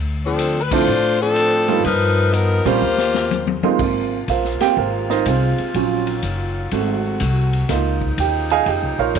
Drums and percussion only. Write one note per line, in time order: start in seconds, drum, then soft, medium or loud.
0.39 hi-hat pedal medium
0.39 ride medium
0.71 kick medium
0.71 crash medium
1.36 hi-hat pedal medium
1.36 ride medium
1.68 ride soft
1.84 kick soft
1.84 ride medium
2.33 hi-hat pedal medium
2.33 ride medium
2.66 ride soft
2.98 snare medium
3.14 snare medium
3.31 hi-hat pedal medium
3.31 high tom medium
3.47 high tom medium
3.63 high tom medium
3.79 kick medium
3.79 crash medium
4.28 kick soft
4.28 hi-hat pedal medium
4.28 ride medium
4.44 snare soft
4.60 snare soft
4.60 ride medium
4.77 kick soft
5.10 snare soft
5.26 kick soft
5.26 hi-hat pedal medium
5.26 ride medium
5.58 ride soft
5.74 kick soft
5.74 ride medium
6.07 ride medium
6.22 kick soft
6.22 hi-hat pedal medium
6.22 ride medium
6.71 kick soft
6.71 ride medium
7.20 kick soft
7.20 hi-hat pedal medium
7.20 ride medium
7.53 ride soft
7.69 kick soft
7.69 snare soft
7.69 ride medium
8.01 kick medium
8.18 kick soft
8.18 hi-hat pedal medium
8.18 ride medium
8.50 ride soft
8.66 kick soft
8.66 ride medium
9.15 kick soft
9.15 hi-hat pedal medium
9.15 ride medium